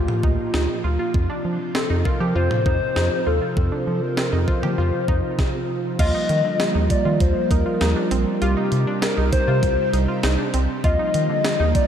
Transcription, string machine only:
Already playing: A#2 F3 A#3 F4
1.14 C3 C4
5.99 F3 G3 A#3 F4
8.42 C3 C4 G4
10.84 F3 A#3 F4

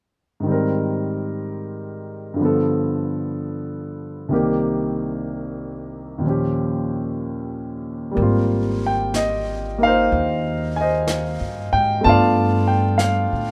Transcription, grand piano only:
0.40 G#2 D#3
0.46 G3 C4
0.52 A#4
2.34 G2 D3
2.40 F3 B3
2.45 A4
4.29 C2 C3 D#3 A#3
4.34 G4
6.18 D#2 A#2
6.24 F3 C#4
6.29 G4
8.11 G3 A#3
8.19 C4 F4
8.86 G5
9.16 D#5
9.78 A#3 D#4
9.83 A#4 C5 F5
10.76 G#5
10.81 C5 D#5
11.73 G5
12.01 A3 B3 D4 A5
12.06 F4 D5 F5
12.68 G5
12.98 F5

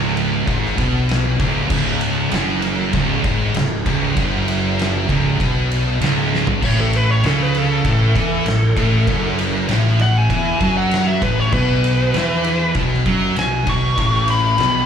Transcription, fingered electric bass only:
Already playing: C#1
0.47 G#1
0.78 B1
1.40 C#1
1.70 C#1
2.32 F#1
2.93 C#1
3.24 G#1
3.55 C#1
3.86 C#1
4.17 F#1
5.10 C#1
5.40 B1
6.01 C#1
6.62 A1
7.24 C#2
7.85 A1
8.16 E2
8.46 A1
8.76 A1
9.07 F#1
9.69 A1
10.30 E2
10.61 F#2
11.22 A1
11.53 B1
12.15 E2
12.75 B1
13.06 F#2
13.36 B1
13.67 B1
13.98 A1
14.59 B1

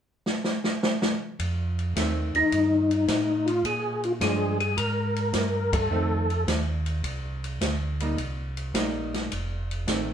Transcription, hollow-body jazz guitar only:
1.96 D#3 A3 C4
4.21 F3 G#3 D4
5.91 D#3 A3 C4
8.01 G3 A#3 D#4
8.74 G3 A#3 D#4
9.89 D#3 A3 C4

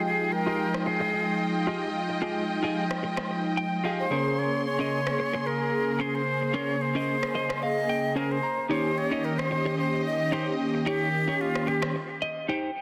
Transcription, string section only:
Already playing: G#3 F4 D#5 G5
4.11 A#3 G#4 C6
8.71 G4 D#5

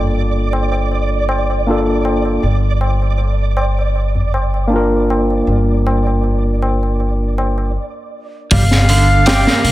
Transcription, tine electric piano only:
Already playing: A#3 D4 F4 A4
1.67 A#3 D4 F4 A4
4.68 A#3 D4
4.73 F4 A#4

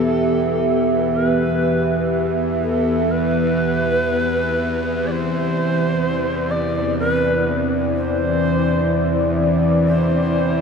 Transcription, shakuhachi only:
Already playing: A4
1.14 A#4
1.25 B4
2.62 A4
3.11 B4
5.06 D5
5.11 C5
6.51 D5
6.99 A#4
7.11 B4
7.96 C5
9.87 C5

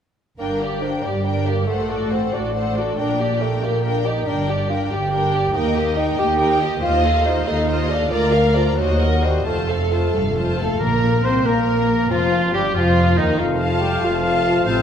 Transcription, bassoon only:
0.38 A#3
0.82 F3
1.03 G3
1.24 G3
1.45 A#3
1.67 A3
2.12 C4
2.33 D4
2.99 D4
3.41 A3
3.64 A#3
3.84 A#3
4.07 D#4
4.28 D4
4.70 F4
4.92 G4
5.56 A#3
5.97 D#4
6.18 G4
6.82 F4
7.25 D#4
7.47 D#4
7.90 D4
8.12 A#3
8.55 F3
8.78 F#3
9.23 G3
9.46 A3
10.80 A#3
11.24 C4
11.45 A#3
12.10 F3
12.54 G3
12.77 F3
13.17 D#3
13.39 A3

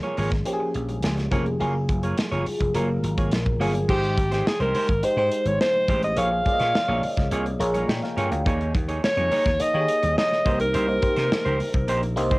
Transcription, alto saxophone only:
3.90 G4
4.33 G4
4.47 G#4
4.61 A#4
5.04 C5
5.47 C#5
5.61 C5
6.04 D#5
6.18 F5
9.05 C#5
9.62 D#5
10.18 D#5
10.60 A#4

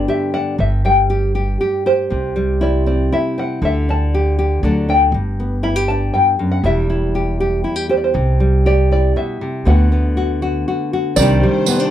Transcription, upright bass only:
0.59 G1
2.12 C2
3.62 D2
4.63 D2
5.12 G1
6.64 E1
8.15 C2
9.66 D2
11.17 C2

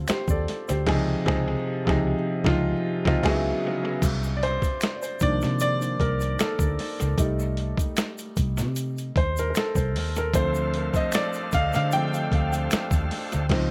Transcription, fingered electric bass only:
0.10 muted fingered electric bass stroke
0.29 D#2
0.70 D2
0.88 C#2
1.27 C#2
1.88 C#2
2.45 C#2
3.06 C#2
3.24 C#2
4.03 C2
5.22 C2
5.44 C3
6.01 C2
6.42 muted fingered electric bass stroke
6.60 D2
7.02 C#2
7.19 C2
8.38 C2
8.60 C3
9.17 D#2
9.76 C2
9.97 D#2
10.35 D2
11.54 D2
11.76 D3
12.33 D2
12.73 muted fingered electric bass stroke
12.92 D#2
13.34 D2
13.51 C#2

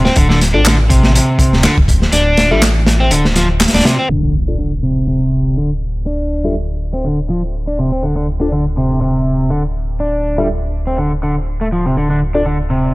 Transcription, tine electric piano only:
0.54 D4 F4 A4 D5
2.51 D4 F4 A4 E5
4.48 D4 F4 A4 D5
6.45 D4 F4 A4 E5
8.41 D4 F4 A4 D5
10.38 D4 F4 A4 E5
12.35 D4 F4 A4 D5

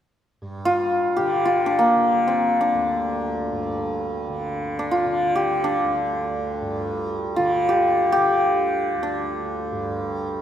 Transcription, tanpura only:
0.42 G2
1.19 D3
1.96 D3
2.75 D2
3.52 G2
4.29 D3
5.07 D3
5.84 D2
6.62 G2
7.39 D3
8.17 D3
8.95 D2
9.72 G2

